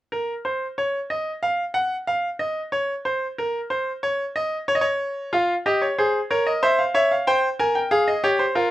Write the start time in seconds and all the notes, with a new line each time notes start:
0.12 A#4
0.45 C5
0.78 C#5
1.10 D#5
1.43 F5
1.74 F#5
2.07 F5
2.39 D#5
2.72 C#5
3.05 C5
3.38 A#4
3.70 C5
4.03 C#5
4.36 D#5
4.68 C#5
4.75 D#5
4.81 C#5
5.33 F4 F5
5.66 G4 D#5
5.82 C#5
5.98 G#4 C5
6.31 A#4 C#5
6.47 D#5
6.63 C5 E5
6.79 F5
6.94 C#5 E5
7.11 F5
7.27 C5 G5
7.59 A#4 G#5
7.75 G5
7.91 G#4 F5
8.08 D#5
8.24 G4 C#5
8.39 C5
8.55 F4 A#4